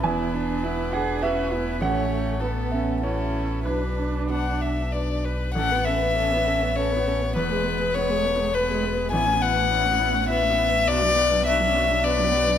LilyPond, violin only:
\new Staff \with { instrumentName = "Violin" } { \time 3/4 \key a \major \tempo 4 = 102 b'2 b'4 | cis''4 a'4 a'4 | b'4 fis''8 e''8 d''8 b'8 | fis''8 e''4. cis''4 |
b'4 cis''4 b'4 | gis''8 fis''4. e''4 | d''4 e''4 d''4 | }